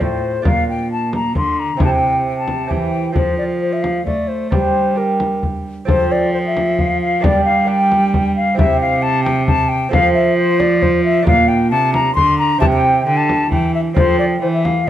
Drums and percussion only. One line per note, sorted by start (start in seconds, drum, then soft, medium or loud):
0.01 frame drum soft
0.45 frame drum medium
1.13 frame drum soft
1.35 frame drum soft
1.80 frame drum medium
2.48 frame drum soft
2.71 frame drum soft
3.16 frame drum medium
3.84 frame drum soft
4.07 frame drum soft
4.52 frame drum medium
5.20 frame drum soft
5.43 frame drum soft
5.88 frame drum medium
6.57 frame drum medium
6.79 frame drum soft
7.24 frame drum medium
7.92 frame drum soft
8.14 frame drum soft
8.59 frame drum medium
9.26 frame drum medium
9.48 frame drum medium
9.93 frame drum medium
10.60 frame drum soft
10.82 frame drum medium
11.27 frame drum medium
11.94 frame drum medium
12.17 frame drum medium
12.62 frame drum medium
13.29 frame drum medium
13.52 frame drum soft
13.97 frame drum medium
14.65 frame drum medium